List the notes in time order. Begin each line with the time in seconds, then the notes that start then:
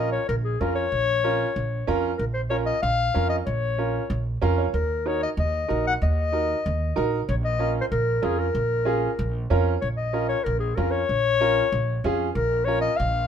Already playing: A#1 C#4 F4 A#4 D#5
0.12 C#5
0.29 A#1 A#4
0.45 G#4
0.61 F2 C#4 F4 A#4
0.75 C#5
0.92 A#1
1.24 C#4 F4 A#4
1.56 A#1
1.87 F2 C#4 F4 A#4
2.18 A#1 A#4
2.34 C5
2.50 C#4 F4 A#4 C#5
2.66 D#5
2.82 A#1 F5
3.14 F2 C#4 F4 A#4
3.30 D#5
3.46 A#1 C#5
3.78 C#4 F4 A#4
4.10 A#1
4.42 F2 C#4 F4 A#4 F5
4.58 C#5
4.74 D#2 A#4
5.06 D#4 F#4 A#4 C#5
5.23 D#5
5.37 D#2 D#5
5.68 A#1 D#4 F#4 A#4
5.87 F#5
6.02 D#2 D#5
6.32 D#4 F#4 A#4
6.66 D#2
6.96 A#1 D#4 F#4 A#4
7.28 A#1 C#5
7.44 D#5
7.59 C#4 F4 A#4
7.81 C5
7.92 A#1 A#4
8.22 F2 C#4 F4 G#4 A#4
8.39 A#4
8.55 A#1
8.85 C#4 F4 G#4
9.19 A#1
9.50 F2 C#4 F4 A#4 C#5
9.81 A#1 C#5
9.97 D#5
10.13 C#4 F4 A#4
10.29 C#5
10.44 A#1 A#4
10.60 G#4
10.76 F2 C#4 F4 A#4
10.91 C#5
11.09 A#1
11.41 C#4 F4 A#4
11.72 A#1
12.04 F2 C#4 F4 G#4
12.33 A#1 A#4
12.65 C#4 F4 A#4 C#5
12.81 D#5
12.97 A#1 F5